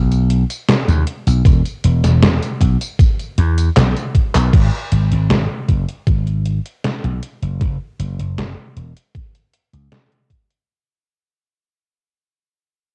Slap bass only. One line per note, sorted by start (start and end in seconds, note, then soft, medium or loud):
0.00 0.43 B1 loud
0.88 1.03 D#2 loud
1.27 1.41 B1 medium
1.45 1.61 E1 loud
1.84 2.00 E1 loud
2.04 2.18 E1 loud
2.22 2.38 E1 loud
2.61 2.76 B1 loud
3.38 3.68 E2 loud
3.76 3.92 B1 loud
4.35 4.49 B1 medium
4.53 4.69 G#1 medium
4.92 5.07 G#1 medium
5.12 5.26 G#1 medium
5.30 5.46 G#1 medium
5.68 5.84 F#1 loud
6.07 6.58 G#1 medium
7.04 7.18 B1 loud
7.42 7.57 F#1 medium
7.61 7.76 F#1 medium
7.99 8.15 F#1 medium
8.19 8.34 F#1 medium
8.38 8.53 F#1 medium
8.76 8.92 E1 medium
9.73 9.88 C#2 medium